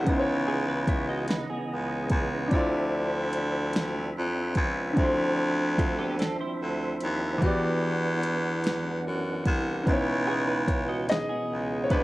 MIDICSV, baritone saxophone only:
0, 0, Header, 1, 2, 480
1, 0, Start_track
1, 0, Tempo, 816327
1, 42, Time_signature, 6, 3, 24, 8
1, 7077, End_track
2, 0, Start_track
2, 0, Title_t, "Baritone saxophone"
2, 0, Program_c, 0, 67
2, 45, Note_on_c, 0, 37, 109
2, 821, Note_off_c, 0, 37, 0
2, 1008, Note_on_c, 0, 37, 79
2, 1222, Note_off_c, 0, 37, 0
2, 1241, Note_on_c, 0, 37, 96
2, 1458, Note_off_c, 0, 37, 0
2, 1485, Note_on_c, 0, 38, 105
2, 2420, Note_off_c, 0, 38, 0
2, 2455, Note_on_c, 0, 41, 85
2, 2665, Note_off_c, 0, 41, 0
2, 2684, Note_on_c, 0, 37, 99
2, 2900, Note_off_c, 0, 37, 0
2, 2927, Note_on_c, 0, 38, 122
2, 3702, Note_off_c, 0, 38, 0
2, 3894, Note_on_c, 0, 38, 81
2, 4105, Note_off_c, 0, 38, 0
2, 4135, Note_on_c, 0, 39, 94
2, 4345, Note_off_c, 0, 39, 0
2, 4367, Note_on_c, 0, 40, 114
2, 5301, Note_off_c, 0, 40, 0
2, 5333, Note_on_c, 0, 42, 81
2, 5544, Note_off_c, 0, 42, 0
2, 5566, Note_on_c, 0, 36, 99
2, 5780, Note_off_c, 0, 36, 0
2, 5808, Note_on_c, 0, 37, 116
2, 6583, Note_off_c, 0, 37, 0
2, 6775, Note_on_c, 0, 37, 75
2, 6985, Note_off_c, 0, 37, 0
2, 7005, Note_on_c, 0, 37, 86
2, 7077, Note_off_c, 0, 37, 0
2, 7077, End_track
0, 0, End_of_file